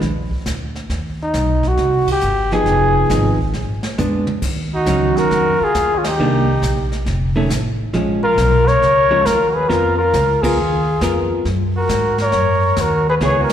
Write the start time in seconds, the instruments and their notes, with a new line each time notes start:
0.01 upright bass A#1, brush sweep, kick, snare
0.31 kick
0.46 upright bass D2, kick, snare, hi-hat pedal
0.75 snare
0.90 upright bass D#2, brush sweep, kick, snare
1.22 flugelhorn D#4
1.34 upright bass B1, kick, snare, hi-hat pedal
1.63 kick, snare
1.68 flugelhorn F#4
1.77 upright bass C2, brush sweep, kick, snare
2.07 muted upright bass stroke, kick, ride
2.12 flugelhorn G4
2.21 upright bass G1, hi-hat pedal
2.51 hollow-body jazz guitar F3 B3 D#4 G#4, flugelhorn G#4, snare
2.65 upright bass F1, brush sweep, kick, snare
3.09 upright bass G#1, hollow-body jazz guitar F3 B3 D#4 G#4, kick, snare, hi-hat pedal
3.39 kick
3.53 upright bass A#1, snare
3.83 snare
3.98 upright bass F2, hollow-body jazz guitar G#3 B3 D4, hi-hat pedal, mid tom
4.27 mid tom
4.42 upright bass D#2, brush sweep, kick, snare, crash
4.75 trumpet D#4, flugelhorn F#4
4.86 upright bass C#2, hollow-body jazz guitar D#3 F#3 C#4, kick, snare, hi-hat pedal
5.17 trumpet F#4, flugelhorn A#4, muted upright bass stroke, snare
5.30 upright bass F2, brush sweep, kick, snare
5.60 trumpet F4, muted upright bass stroke
5.64 flugelhorn G#4
5.74 upright bass D#2, kick, snare, hi-hat pedal
5.95 trumpet C#4, flugelhorn F4
6.04 trumpet D#4, snare, ride
6.09 flugelhorn G4
6.19 upright bass C2, hollow-body jazz guitar D#3 A#3 D4, brush sweep
6.62 upright bass A#1, kick, snare, hi-hat pedal
6.92 snare
7.06 upright bass F1, brush sweep, kick, snare
7.36 hollow-body jazz guitar D#3 A3 C#4
7.50 upright bass A1, kick, snare, hi-hat pedal
7.93 upright bass A#1, hollow-body jazz guitar F3 G#3 C#4, brush sweep, kick, snare
8.23 trumpet F4, flugelhorn A#4
8.38 upright bass B1, kick, snare, hi-hat pedal
8.66 trumpet A#4, flugelhorn C#5, snare
8.82 upright bass C#2, brush sweep, kick, snare
9.11 hollow-body jazz guitar F3 G#3 C#4
9.23 upright bass D#2, trumpet F4, flugelhorn A#4, kick, snare, hi-hat pedal
9.47 trumpet F#4, flugelhorn A#4
9.54 trumpet G#4, flugelhorn B4
9.68 upright bass F2, hollow-body jazz guitar B3 F4 A#4, trumpet F4, flugelhorn A#4, brush sweep, kick, snare
9.97 trumpet F4, flugelhorn A#4
10.13 upright bass C#2, kick, snare, hi-hat pedal
10.42 hollow-body jazz guitar B3 F4 A#4, trumpet F4, flugelhorn G#4, kick, crash
10.57 upright bass D#2, brush sweep
11.01 upright bass F2, hollow-body jazz guitar B3 F4 A#4, kick, snare, hi-hat pedal
11.45 upright bass F#2, brush sweep, kick, snare
11.76 trumpet F#4, flugelhorn A#4
11.89 upright bass G#2, kick, snare, hi-hat pedal
12.18 trumpet A#4, snare
12.23 flugelhorn C#5
12.32 upright bass F#2, brush sweep, kick, snare
12.76 upright bass D#2, trumpet F#4, kick, snare, hi-hat pedal
12.82 flugelhorn A#4
13.09 trumpet G#4, flugelhorn B4
13.20 upright bass C#2, hollow-body jazz guitar B3 E4 G#4, trumpet G#4, flugelhorn C#5, brush sweep, kick, snare
13.39 trumpet F#4, flugelhorn A#4
13.50 snare, ride